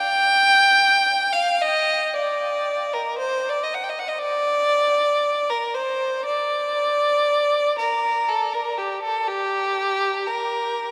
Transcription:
violin
Already playing: G5
1.33 F5
1.62 D#5
2.14 D5
2.94 A#4
3.18 C5
3.49 D5
3.64 D#5
3.75 F#5
3.84 G5
3.89 D#5
4.00 F#5
4.09 D#5
4.19 D5
5.50 A#4
5.75 C5
6.25 D5
7.79 A#4
8.29 A4
8.54 A#4
8.78 G4
9.03 A4
9.28 G4
10.27 A#4

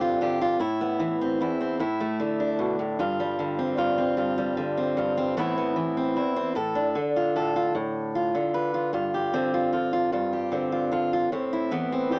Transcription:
steel-string acoustic guitar
Already playing: G2 D3 C4 G4
0.01 F4
0.21 D3 G4
0.42 F4
0.60 A2 E4
0.81 B3
1.00 E3
1.21 C4
1.41 E2 E4
1.61 C4
1.79 A2 E4
2.00 A3
2.20 D3
2.40 D4
2.59 B2
2.79 A2
2.99 G2 F4
3.20 G3
3.39 D3
3.59 C4
3.77 G2 F4
3.98 C4
4.17 G2 F4
4.38 G3
4.57 D3
4.77 C4
4.97 G2 F4
5.17 C4
5.37 A2 E3 B3 C4 E4
5.58 B3
5.76 E3
5.97 C4
6.16 E2 E4
6.36 C4
6.55 A2 A4
6.75 D4
6.95 D3
7.16 F4
7.36 A2 A4
7.56 F4
7.75 A2
8.15 F4
8.35 D3
8.54 B4
8.74 F4
8.93 G2 F4
9.14 G4
9.33 D3 C4
9.54 F4
9.72 D3 F4
9.93 F4
10.12 G2 F4
10.33 G4
10.52 D3 C4
10.72 F4
10.92 D3 F4
11.13 F4
11.32 A2 C4
11.53 E4
11.71 E3 B3
11.92 C4
12.11 E2 G4

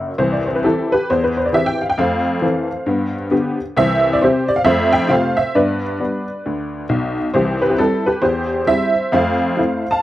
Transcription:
honky-tonk piano
0.18 C2 E3 C5
0.33 D5
0.46 C5
0.55 B4
0.64 E3 C4 E4 G4 A4
0.92 G4 B4
1.10 E2 C5
1.24 B4
1.37 C5
1.46 D5
1.53 E3 C4 G4 E5
1.66 G5
1.81 F5
1.90 G5
1.98 F2 A3 C5 F5
2.42 E3 C4 A4
2.86 G2 B3
3.31 D3 B3 G4
3.77 C2 E3 C5 E5
4.13 D5
4.22 C3 C4 G4 C5
4.48 D5
4.56 F5
4.65 F2 A3 C5 E5
4.93 E5 G5
5.09 C3 A3 F4 C5 F5
5.37 C5 E5
5.55 G2 B3 B4 D5
5.99 G3 B3 D4
6.46 D2
6.89 B1
7.34 C2 E3 G4 C5
7.62 B4
7.69 G4
7.78 G3 C4 E4 A4
8.06 G4 B4
8.22 E2 G4 C5
8.67 G3 C4 E4 C5 E5
9.12 F2 A3 C5 F5
9.57 A3 C4 E4
9.91 F5 A5

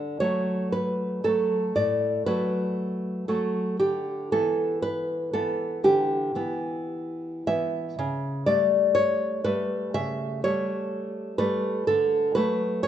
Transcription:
nylon-string guitar
Already playing: D3 D5
0.20 F#3 A3 C#5
0.72 B4
1.24 F#3 A3 A4
1.76 A2 D5
2.26 F#3 A3 B4
3.28 F#3 A3 A4
3.80 D3 G4
4.32 E3 B3 A4
4.82 B4
5.33 E3 B3 A4
5.84 D3 G4
6.35 E3 B3
7.47 E3 B3 E5
7.99 C#3
8.46 G3 A3 D5
8.95 C#5
9.45 G3 A3 B4
9.94 C#3 E5
10.44 G3 A3 C#5
11.38 G3 A3 B4
11.87 D3 A4
12.35 F#3 A3 B4
12.83 C#5

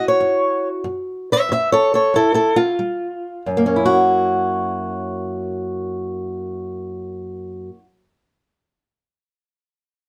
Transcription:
steel-string acoustic guitar
Already playing: F#2 E4
0.00 F#4
0.08 C#5
0.20 F#2
0.84 F#2
1.32 C#5 E5
1.49 F#2 E5
1.72 A4 C#5
1.94 A4 C#5
2.14 F#2 E4 A4
2.34 E4 A4
2.56 F4
2.79 G3
3.46 F#2
3.57 A#3
3.66 C#4
3.76 E4
3.85 F#4

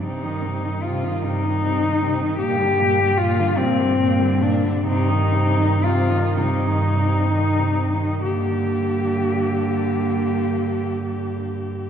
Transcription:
cello
0.03 G2 C3 C4 D#4
0.23 D#3 D#4
0.41 C4
0.46 C3
0.63 D#3 D#4
0.82 C3 C4 F4
1.03 D#3 D#4
1.21 G2 C3 C4 D#4
1.44 D#3 D#4
1.63 C3 C4
1.82 D#3 D#4
2.02 C3 C4
2.21 D#3 D#4
2.39 G2 A#2 A#3 G4
2.59 D3 G3
2.79 A#2 A#3
2.99 D3 G3
3.18 A#2 A#3 F4
3.39 D3 G3
3.57 G2 A#2 A#3 C4
3.79 D3 G3
4.00 A#2 A#3
4.20 D3 G3
4.41 A#2 A#3 D4
4.63 D3 G3
4.85 G2 C3 C4 D#4
5.09 D#3 D#4
5.32 C3 C4
5.57 D#3 D#4
5.81 C3 C4 F4
6.10 D#3 D#4
6.37 G2 C3 C4 D#4
6.67 D#3 D#4
6.96 C3 C4
7.28 D#3 D#4
7.60 C3 C4
7.92 D#3 D#4
8.22 G2 D3 A#3 G4

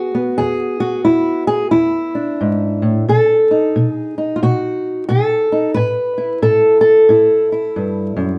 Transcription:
steel-string acoustic guitar
Already playing: E2 B3 F#4 G#4
0.14 B3
0.38 E2 G#4
0.80 F#4
1.05 E2 E4
1.47 G#4
1.71 E2 E4
2.15 D4
2.41 G#2
2.82 A2
3.08 B2 A4
3.51 D#4
3.76 B2
3.92 G#4
4.18 D#4
4.36 F4
4.43 B2 F#4
5.09 B2 A4
5.52 D#4
5.74 A2 B4
6.18 E4
6.42 A2 A4
6.81 A4
7.09 A2 E4
7.52 E4
7.76 G2
8.16 F#2

